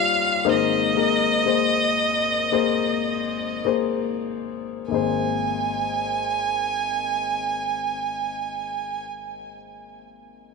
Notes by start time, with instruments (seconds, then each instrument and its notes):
Already playing: grand piano D#2 D#3 G3 F4 G4 C#5, violin F5
0.45 grand piano G#1 G#2 A#3 G#4 C5
0.49 violin D#5
0.95 grand piano A#3 G#4 A#4
1.45 grand piano A#3 G#4 C5
2.52 grand piano A#3 G#4 C5
3.65 grand piano A#3 G#4 C5
4.88 grand piano G#1 A#3 G#4, violin G#5
4.94 grand piano C5